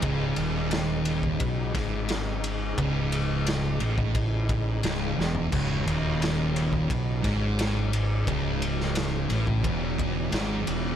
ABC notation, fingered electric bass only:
X:1
M:4/4
L:1/8
Q:1/4=88
K:C#m
V:1 name="Fingered electric bass" clef=bass
C,,, D,,,3 B,,, G,,,3 | C,,,3 A,,,3 C,,, E,,, | C,,, D,,,3 B,,, G,,,3 | C,,,3 A,,, E,,,2 G,,, E,,, |]